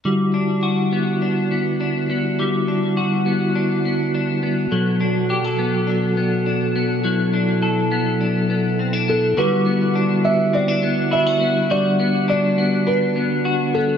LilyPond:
<<
  \new Staff \with { instrumentName = "Felt piano" } { \time 4/4 \key e \minor \tempo 4 = 103 r1 | r1 | r1 | r2. r8 a'8 |
b'4. e''8 d''4 e''4 | d''4 d''4 b'4. a'8 | }
  \new Staff \with { instrumentName = "Tonewheel organ" } { \time 4/4 \key e \minor << { fis'1~ | fis'1 | a'1 | e'1 |
fis'1~ | fis'1 | } \\ { e'1~ | e'1 | r1 | r1 |
e'1 | d'1 | } >> }
  \new Staff \with { instrumentName = "Tonewheel organ" } { \clef bass \time 4/4 \key e \minor <d g>1~ | <d g>1 | <b, fis>1~ | <b, fis>1 |
<d g>1~ | <d g>1 | }
  \new Staff \with { instrumentName = "Clean electric guitar" } { \time 4/4 \key e \minor g8 d'8 fis'8 b8 d'8 b8 d'8 b8 | g8 d'8 fis'8 b8 d'8 b8 d'8 b8 | fis8 d'8 g'16 a'16 b8 d'8 b8 d'8 b8 | fis8 d'8 a'8 b8 d'8 b8 c'16 d'16 b8 |
<g fis'>8 b8 d'8 b8 c'16 d'16 b8 e'16 fis'16 b8 | <g fis'>8 b8 d'8 b8 d'8 b8 fis'8 b8 | }
>>